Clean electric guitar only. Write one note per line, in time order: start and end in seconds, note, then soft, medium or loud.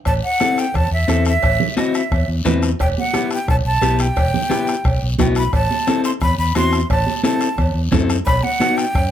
0.41 0.64 C4 medium
0.41 0.65 E4 medium
0.41 0.65 A4 medium
1.08 1.32 C4 medium
1.08 1.32 E4 medium
1.08 1.33 A4 medium
1.77 2.01 C4 medium
1.77 2.01 E4 medium
1.77 2.01 F#4 medium
2.45 2.69 C4 medium
2.45 2.69 E4 medium
2.45 2.69 B4 medium
3.14 3.38 B3 medium
3.14 3.38 E4 medium
3.14 3.38 G4 medium
3.82 4.06 B3 medium
3.82 4.06 E4 medium
3.82 4.06 G4 medium
4.50 4.74 B3 medium
4.50 4.74 E4 medium
4.50 4.75 G4 medium
5.19 5.43 B3 medium
5.19 5.43 E4 medium
5.19 5.43 F#4 medium
5.87 6.11 C4 medium
5.87 6.11 E4 medium
5.87 6.11 A4 medium
6.56 6.79 C4 medium
6.56 6.80 E4 medium
6.56 6.80 F#4 medium
7.24 7.48 C4 medium
7.24 7.48 E4 medium
7.24 7.48 A4 medium
7.92 8.16 C4 medium
7.92 8.16 E4 medium
7.92 8.16 A4 medium
8.60 8.84 B3 medium
8.60 8.84 D#4 medium
8.60 8.85 F#4 medium